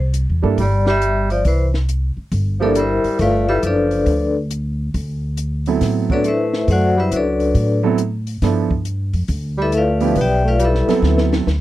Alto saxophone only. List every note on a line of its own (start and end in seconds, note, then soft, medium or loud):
0.60 0.85 G3 medium
0.87 1.27 G3 medium
1.31 1.44 F3 medium
1.46 1.72 E3 medium
2.60 2.74 F3 medium
2.76 3.17 G3 medium
3.20 3.47 A3 medium
3.49 3.63 G3 medium
3.64 4.32 F3 medium
6.11 6.24 F#3 medium
6.25 6.66 A3 medium
6.69 6.96 A3 medium
6.97 7.11 G3 medium
7.12 7.80 F#3 medium
9.58 9.72 G3 medium
9.74 10.14 A3 medium
10.17 10.44 B3 medium
10.44 10.58 A3 medium
10.59 11.00 G3 medium